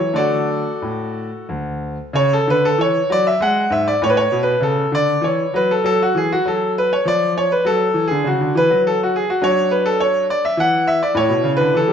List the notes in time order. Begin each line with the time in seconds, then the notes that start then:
Already playing: C#5
0.00 E3
0.13 D3 A3 D4 F#4 A4 D5
0.82 A2
1.49 D2
2.13 C#3 C#5
2.33 A4
2.48 D3 B4
2.65 A4
2.78 E3 C#5
3.10 F#3 D5
3.27 E5
3.40 G#3 F#5
3.70 G#2 E5
3.88 D5
4.02 A2 C#5
4.10 B4
4.17 C#5
4.32 B2
4.43 B4
4.61 C#3 A4
4.92 D3 D5
5.21 E3 C#5
5.54 F#3 B4
5.71 A4
5.84 F#3 A4
6.02 F#4
6.15 E3 G#4
6.32 F#4
6.45 F#3 A4
6.78 B4
6.93 C#5
7.05 F3 D5
7.38 C#5
7.52 B4
7.65 F#3 A4
7.94 E3
8.07 D3 G#4
8.24 C#3 F#4
8.41 D3
8.55 E3 B4
8.70 F#3
8.87 A4
9.03 F#4
9.16 G#4
9.30 F#4
9.41 F#3 D4 C#5
9.71 B4
9.86 A4
10.00 C#5
10.30 D5
10.45 E5
10.57 E3 F#5
10.87 E5
11.03 D5
11.14 A2 E4 C#5
11.29 B2
11.44 C#3
11.57 D3 B4
11.74 E3 A4
11.88 G3